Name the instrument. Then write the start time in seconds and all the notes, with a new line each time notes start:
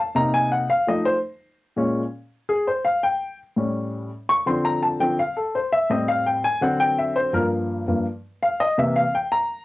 grand piano
Already playing: A5
0.15 C3 A#3 D#4 A#5
0.34 G#5
0.52 F#5
0.70 F5
0.87 F3 A3 D#4 D#5
1.05 C5
1.76 A#2 G#3 C#4
2.49 G#4
2.67 C5
2.85 F5
3.03 G5
3.57 A2 G3 C#4
4.29 C#6
4.46 D3 F3 C4 C6
4.65 A#5
4.83 A5
5.00 D3 F3 C4 G5
5.19 F5
5.37 A4
5.55 C5
5.72 E5
5.90 A2 G3 C4 D#5
6.08 F5
6.26 G5
6.44 G#5
6.61 D3 F#3 C4 F#5
6.80 G5
6.98 E5
7.16 C5
7.33 G2 F3 A#3 A#4
7.88 G2 F3 A#3
8.43 F5
8.60 D#5
8.78 C3 E3 A#3 E5
8.96 F5
9.15 G5
9.32 A#5